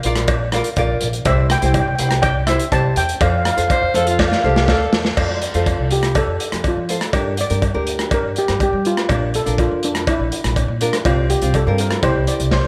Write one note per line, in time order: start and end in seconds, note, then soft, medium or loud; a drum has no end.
0.03 0.61 A#1 medium
0.03 0.34 F4 medium
0.03 0.34 A#4 medium
0.03 0.35 D5 loud
0.03 closed hi-hat medium
0.15 cross-stick medium
0.15 closed hi-hat medium
0.28 kick loud
0.28 closed hi-hat medium
0.28 cowbell loud
0.52 0.68 F4 medium
0.52 0.68 A#4 medium
0.52 0.68 D5 loud
0.52 cross-stick medium
0.52 closed hi-hat medium
0.64 closed hi-hat medium
0.76 0.96 A#1 medium
0.76 1.07 F4 medium
0.76 1.07 A#4 medium
0.76 1.07 D5 medium
0.76 kick medium
0.76 closed hi-hat medium
0.76 cowbell medium
1.01 1.20 A#1 medium
1.01 closed hi-hat medium
1.13 closed hi-hat medium
1.25 1.54 C2 loud
1.25 1.48 E4 medium
1.25 1.48 G4 medium
1.25 1.49 C5 medium
1.25 1.52 E5 medium
1.25 kick loud
1.25 closed hi-hat medium
1.25 cowbell medium
1.50 1.57 G5 loud
1.50 cross-stick medium
1.50 closed hi-hat medium
1.58 1.81 C2 medium
1.58 1.85 E4 medium
1.58 1.85 G4 medium
1.58 1.65 G5 medium
1.58 closed hi-hat medium
1.63 1.85 C5 medium
1.63 1.71 G5 medium
1.73 1.79 G5 medium
1.73 kick medium
1.73 closed hi-hat medium
1.73 cowbell medium
1.80 1.87 G5 medium
1.88 1.97 C2 medium
1.88 1.94 G5 medium
1.95 2.55 C2 medium
1.95 2.29 E4 medium
1.95 2.29 G4 medium
1.95 2.01 G5 medium
1.95 closed hi-hat medium
2.00 2.29 C5 medium
2.00 2.08 G5 medium
2.09 2.17 G5 medium
2.09 cross-stick medium
2.09 closed hi-hat medium
2.22 2.48 G5 loud
2.22 kick loud
2.22 closed hi-hat medium
2.22 cowbell medium
2.47 2.63 E4 medium
2.47 2.63 G4 medium
2.47 2.63 C5 medium
2.47 2.73 E5 medium
2.47 cross-stick medium
2.47 closed hi-hat medium
2.60 closed hi-hat medium
2.72 2.91 C2 medium
2.72 3.02 E4 medium
2.72 3.02 G4 medium
2.72 3.02 C5 medium
2.72 2.98 A5 loud
2.72 kick medium
2.72 closed hi-hat medium
2.72 cowbell medium
2.96 3.16 E2 medium
2.96 3.08 G5 loud
2.96 closed hi-hat medium
3.09 closed hi-hat medium
3.21 3.49 F2 loud
3.21 3.43 F4 medium
3.21 3.44 A4 medium
3.21 3.44 C5 medium
3.21 3.29 F5 medium
3.21 kick loud
3.21 closed hi-hat medium
3.21 cowbell medium
3.30 3.37 F5 medium
3.38 3.44 F5 medium
3.45 3.51 F5 medium
3.45 cross-stick medium
3.45 closed hi-hat medium
3.53 3.59 F5 medium
3.57 3.77 F2 medium
3.57 3.80 F4 medium
3.57 3.80 A4 medium
3.57 3.80 C5 medium
3.57 closed hi-hat medium
3.62 3.67 F5 medium
3.68 3.96 C5 loud
3.68 3.73 F5 medium
3.68 kick medium
3.68 closed hi-hat medium
3.68 cowbell medium
3.74 3.81 F5 medium
3.82 3.92 F2 medium
3.82 3.88 F5 medium
3.89 3.96 F5 soft
3.94 4.32 F2 medium
3.94 4.24 F4 medium
3.94 4.24 A4 medium
3.94 4.10 A4 medium
3.94 4.24 C5 medium
3.94 4.04 F5 medium
3.94 closed hi-hat medium
4.05 4.44 F4 medium
4.05 4.10 F5 soft
4.05 closed hi-hat medium
4.11 4.18 F5 medium
4.19 kick loud
4.19 snare medium
4.19 cowbell loud
4.28 4.34 F5 medium
4.28 snare medium
4.35 4.42 F5 medium
4.43 4.66 C2 medium
4.43 4.59 F4 medium
4.43 4.71 G4 medium
4.43 4.59 A4 medium
4.43 4.59 C5 medium
4.43 4.49 F5 medium
4.50 4.56 F5 medium
4.56 4.64 F5 medium
4.56 snare medium
4.66 4.90 D2 medium
4.66 4.98 F4 medium
4.66 4.98 A4 medium
4.66 5.18 A4 medium
4.66 4.98 D5 medium
4.66 4.72 F5 medium
4.66 kick medium
4.66 snare medium
4.66 cowbell medium
4.74 4.80 F5 medium
4.93 5.15 E2 medium
4.93 snare loud
5.05 snare medium
5.17 5.45 F2 medium
5.17 5.40 F4 medium
5.17 5.40 A4 medium
5.17 5.40 C5 medium
5.17 kick loud
5.17 crash medium
5.17 cowbell medium
5.42 closed hi-hat medium
5.54 5.73 F2 medium
5.54 6.13 F4 medium
5.54 6.13 A4 medium
5.54 6.13 C5 medium
5.54 closed hi-hat medium
5.66 kick medium
5.66 closed hi-hat medium
5.66 cowbell medium
5.79 6.16 C2 medium
5.91 6.17 G4 medium
5.91 closed hi-hat medium
6.03 cross-stick medium
6.03 closed hi-hat medium
6.15 6.62 A4 medium
6.15 kick medium
6.15 closed hi-hat medium
6.15 cowbell medium
6.27 6.37 F2 medium
6.40 closed hi-hat medium
6.52 6.71 F2 medium
6.52 cross-stick medium
6.52 closed hi-hat medium
6.64 kick medium
6.64 closed hi-hat medium
6.64 cowbell medium
6.68 7.12 F4 medium
6.77 6.96 F3 medium
6.89 7.04 F4 medium
6.89 7.04 A4 medium
6.89 7.04 C5 medium
6.89 closed hi-hat medium
7.01 cross-stick medium
7.01 closed hi-hat medium
7.13 7.42 G2 medium
7.13 7.36 D4 medium
7.13 7.36 G4 medium
7.13 7.36 A#4 medium
7.13 kick loud
7.13 closed hi-hat medium
7.13 cowbell loud
7.37 8.15 D5 loud
7.37 closed hi-hat medium
7.50 7.69 G2 medium
7.50 7.65 D4 medium
7.50 7.65 G4 medium
7.50 7.65 A#4 medium
7.50 closed hi-hat medium
7.62 kick medium
7.62 closed hi-hat medium
7.62 cowbell medium
7.74 8.13 D2 medium
7.74 8.34 D4 medium
7.74 8.34 G4 medium
7.74 8.34 A#4 medium
7.87 closed hi-hat medium
7.99 cross-stick medium
7.99 closed hi-hat medium
8.11 8.38 A#4 medium
8.11 kick loud
8.11 closed hi-hat medium
8.11 cowbell medium
8.23 8.33 G2 medium
8.36 8.60 G4 medium
8.36 closed hi-hat medium
8.48 8.68 G2 medium
8.48 cross-stick medium
8.48 closed hi-hat medium
8.60 8.87 G4 medium
8.60 kick medium
8.60 closed hi-hat medium
8.60 cowbell medium
8.73 8.92 G3 medium
8.85 9.37 F4 medium
8.85 closed hi-hat medium
8.97 cross-stick medium
8.97 closed hi-hat medium
9.09 9.38 A#1 medium
9.09 9.32 D4 medium
9.09 9.32 F4 medium
9.09 9.32 A#4 medium
9.09 kick loud
9.09 closed hi-hat medium
9.09 cowbell medium
9.34 9.60 A4 medium
9.34 closed hi-hat medium
9.46 9.65 A#1 medium
9.46 10.05 D4 medium
9.46 10.05 F4 medium
9.46 10.05 A#4 medium
9.46 closed hi-hat medium
9.58 9.85 F4 medium
9.58 kick medium
9.58 closed hi-hat medium
9.58 cowbell medium
9.71 10.09 F2 medium
9.83 10.07 D4 medium
9.83 closed hi-hat medium
9.95 cross-stick medium
9.95 closed hi-hat medium
10.07 11.03 E4 medium
10.07 kick loud
10.07 closed hi-hat medium
10.07 cowbell loud
10.19 10.29 A#1 medium
10.32 closed hi-hat medium
10.44 10.63 A#1 medium
10.44 cross-stick medium
10.44 closed hi-hat medium
10.56 kick medium
10.56 closed hi-hat medium
10.56 cowbell medium
10.68 10.87 A#2 medium
10.81 10.96 D4 medium
10.81 10.96 F4 medium
10.81 10.96 A#4 medium
10.81 closed hi-hat medium
10.93 cross-stick medium
10.93 closed hi-hat medium
11.05 11.34 C2 loud
11.05 11.28 C4 medium
11.05 11.28 F4 medium
11.05 11.31 F4 medium
11.05 11.28 G4 medium
11.05 kick loud
11.05 closed hi-hat medium
11.05 cowbell loud
11.30 11.53 G4 medium
11.30 closed hi-hat medium
11.42 11.61 C2 medium
11.42 11.57 C4 medium
11.42 11.57 F4 medium
11.42 11.57 G4 medium
11.42 closed hi-hat medium
11.54 11.80 A4 medium
11.54 kick medium
11.54 closed hi-hat medium
11.54 cowbell medium
11.67 11.95 G2 medium
11.67 12.03 C4 medium
11.67 12.03 F4 medium
11.67 12.04 A#4 medium
11.78 12.05 A#4 medium
11.78 closed hi-hat medium
11.91 cross-stick medium
11.91 closed hi-hat medium
12.03 12.13 C2 medium
12.03 12.67 C4 medium
12.03 12.67 E4 medium
12.03 12.67 G4 medium
12.03 12.29 C5 medium
12.03 kick loud
12.03 closed hi-hat medium
12.03 cowbell medium
12.15 12.25 C2 medium
12.27 12.53 D5 medium
12.27 closed hi-hat medium
12.40 12.59 C2 medium
12.40 closed hi-hat medium
12.51 12.59 C5 medium
12.51 kick medium
12.51 snare medium
12.51 cowbell medium
12.60 12.65 C5 medium